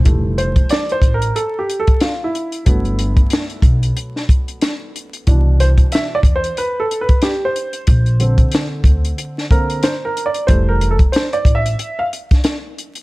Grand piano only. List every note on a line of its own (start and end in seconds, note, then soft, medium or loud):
0.04 0.99 E3 medium
0.04 0.99 G3 soft
0.04 1.00 A3 medium
0.38 0.72 C5 medium
0.70 0.93 D5 medium
0.92 1.15 C5 loud
1.14 1.34 A#4 medium
1.36 1.58 A4 medium
1.59 1.78 G4 medium
1.80 2.00 A4 medium
2.02 2.24 F4 medium
2.24 3.82 E4 medium
2.65 5.23 F#3 medium
2.65 5.23 A3 soft
2.65 5.23 B3 medium
5.27 6.21 B2 medium
5.27 6.21 E3 medium
5.27 6.22 D4 medium
5.60 5.67 C5 medium
5.92 6.15 E5 medium
6.15 6.20 D5 loud
6.36 6.56 C5 loud
6.58 6.80 B4 medium
6.80 7.00 A4 medium
7.01 7.24 B4 medium
7.23 7.45 G4 medium
7.45 9.04 C5 medium
8.20 9.49 D3 medium
8.20 9.50 C4 medium
8.20 10.45 A4 soft
9.51 9.80 D3 soft
9.51 9.81 A#3 soft
9.51 9.81 C4 medium
9.51 9.85 A#4 medium
9.83 10.04 C5 medium
10.05 10.28 A#4 medium
10.26 10.49 D5 medium
10.47 10.94 E3 medium
10.47 10.95 G3 medium
10.47 10.95 A3 medium
10.47 10.70 C5 medium
10.69 10.92 A#4 medium
10.91 10.96 A4 medium
11.12 11.36 C5 medium
11.33 11.57 D5 medium
11.55 12.01 E5 loud
11.99 12.06 F5 medium